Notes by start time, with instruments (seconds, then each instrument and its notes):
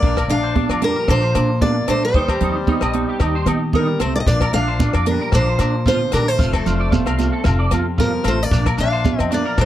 Already playing: trombone A#3, steel-string acoustic guitar D5
0.02 upright bass A#1, clean electric guitar A#2 F3 D4, kick, muted conga
0.06 clean electric guitar F4 A#4
0.17 clean electric guitar A#4, kick, cross-stick, low agogo
0.28 upright bass A#1, clean electric guitar D4, trombone D4, steel-string acoustic guitar F5, closed hi-hat, muted conga
0.43 clean electric guitar C5
0.55 clean electric guitar D4, kick, high conga
0.69 upright bass F2, clean electric guitar F4 D5, cross-stick, low agogo
0.81 clean electric guitar F3 D4, trombone G3, steel-string acoustic guitar A#4, closed hi-hat, high conga
0.96 clean electric guitar A#4
1.08 upright bass A#1, trombone F3, clean electric guitar D4 A#4, steel-string acoustic guitar C5, kick, cross-stick, muted conga, low agogo
1.22 clean electric guitar C5
1.35 upright bass A#2, clean electric guitar A#2 D4, cross-stick, closed hi-hat, low agogo
1.61 trombone A#3, clean electric guitar D4 F4, steel-string acoustic guitar D5, kick, muted conga, high conga
1.88 upright bass A#2, trombone A3, clean electric guitar D4, steel-string acoustic guitar C5, cross-stick, closed hi-hat, low agogo
2.05 trombone G3, steel-string acoustic guitar C5
2.14 upright bass D#2, clean electric guitar D#4 G4, muted clean electric guitar stroke, kick, muted conga
2.28 clean electric guitar G4, kick, cross-stick, low agogo
2.40 upright bass D#2, clean electric guitar C4 D#4, closed hi-hat, muted conga, low conga
2.56 muted clean electric guitar stroke
2.67 clean electric guitar D#4, kick, high conga
2.81 upright bass A#1, clean electric guitar D#5, cross-stick, low agogo
2.93 clean electric guitar G3 D#4, closed hi-hat, high conga
3.09 clean electric guitar G4
3.20 upright bass D#2, clean electric guitar D#4 G4, kick, cross-stick, muted conga, low agogo
3.35 clean electric guitar C5
3.46 clean electric guitar A#2 D#4, upright bass D#3, cross-stick, closed hi-hat, high conga, low agogo
3.73 clean electric guitar D3 D#4, steel-string acoustic guitar A#4, kick, muted conga, high conga
3.77 trombone G3
4.00 upright bass C2, clean electric guitar C3 C4, trombone A3, steel-string acoustic guitar C5, cross-stick, closed hi-hat, low agogo
4.16 trombone A#3, steel-string acoustic guitar D5
4.20 trombone C4, steel-string acoustic guitar D#5
4.26 upright bass A#1, clean electric guitar A#2 F3 D4, trombone A#3, steel-string acoustic guitar D5, kick, muted conga, shekere
4.31 clean electric guitar D4 F4 A#4
4.41 clean electric guitar A#4, kick, cross-stick, low agogo
4.53 upright bass A#1, clean electric guitar D4, trombone D4, steel-string acoustic guitar F5, closed hi-hat, muted conga, shekere
4.67 clean electric guitar C5
4.80 clean electric guitar D4 F4, kick, high conga, shekere
4.93 upright bass F2, clean electric guitar D5, cross-stick, low agogo
5.06 clean electric guitar F3 D4, trombone G3, steel-string acoustic guitar A#4, closed hi-hat, high conga
5.21 clean electric guitar A#4
5.32 upright bass A#1, trombone F3, clean electric guitar D4 A#4, steel-string acoustic guitar C5, kick, cross-stick, low agogo, shekere
5.48 clean electric guitar C5
5.59 upright bass A#2, clean electric guitar A#2 D4, cross-stick, closed hi-hat, low agogo, shekere
5.86 clean electric guitar D3 F4, steel-string acoustic guitar C5, kick, muted conga, high conga, shekere
5.91 trombone F3
6.12 upright bass A#2, clean electric guitar D#3 D4, steel-string acoustic guitar A#4, cross-stick, closed hi-hat, low agogo, shekere
6.16 trombone G3
6.28 trombone A3, steel-string acoustic guitar C5
6.39 upright bass F1, clean electric guitar F3 F4 A4, kick, muted conga, shekere
6.53 clean electric guitar A4, kick, cross-stick, low agogo
6.66 upright bass F1, clean electric guitar D4 F4, closed hi-hat, muted conga, low conga, shekere
6.80 clean electric guitar D5
6.91 clean electric guitar F4 A4, kick, high conga, shekere
7.06 upright bass C2, clean electric guitar F5, cross-stick, low agogo
7.18 clean electric guitar C4 F4, closed hi-hat, high conga, shekere
7.32 clean electric guitar A4
7.44 upright bass F1, clean electric guitar F4 A4, kick, cross-stick, low agogo, shekere
7.59 clean electric guitar D5
7.71 upright bass F2, clean electric guitar C3 F4, cross-stick, closed hi-hat, high conga, low agogo, shekere
7.98 trombone F3, clean electric guitar G3 F4, steel-string acoustic guitar A#4, kick, muted conga, high conga, shekere
8.24 upright bass A1, clean electric guitar A3 F4, cross-stick, closed hi-hat, low agogo, shekere
8.28 trombone A3, steel-string acoustic guitar C5
8.43 trombone A#3, steel-string acoustic guitar D5
8.51 upright bass A#1, clean electric guitar A#2 D4 A#4, kick, muted conga, shekere
8.66 clean electric guitar A#4, kick, cross-stick, low agogo
8.77 upright bass A#1, clean electric guitar D4, trombone D4, steel-string acoustic guitar F5, closed hi-hat, muted conga, shekere
8.92 clean electric guitar C5
9.04 clean electric guitar F4, kick, high conga, shekere
9.19 upright bass F2, cross-stick, low agogo
9.31 clean electric guitar F3 D4, trombone A#3, steel-string acoustic guitar D5, closed hi-hat, high conga, shekere
9.45 clean electric guitar A#4
9.58 upright bass A#1, trombone F3, clean electric guitar D4 A#4, steel-string acoustic guitar C5, kick, cross-stick, muted conga, low agogo, shekere